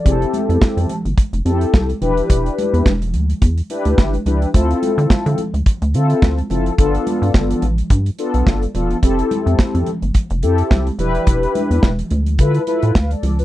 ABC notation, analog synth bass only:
X:1
M:4/4
L:1/16
Q:"Swing 16ths" 1/4=107
K:Flyd
V:1 name="Analog synth bass" clef=bass
F,,,2 z F,, F,, F,, z G,,, z F,,, F,,2 C,,2 E,,,2 | E,,,2 z E,, E,,,2 D,,2 E,,2 z D,, G,,,2 ^C,,2 | D,,2 z D, D, D, z D,, z D,, D,2 D,,2 ^F,,,2 | G,,,2 z G,, G,,,2 A,,,2 G,,2 z B,,, G,,,2 E,,,2 |
F,,,2 z F,, F,, F,, z G,,, z F,,, F,,2 C,,2 E,,,2 | E,,,2 z E,, E,,,2 D,,2 D,2 z A,, D,,2 ^C,,2 |]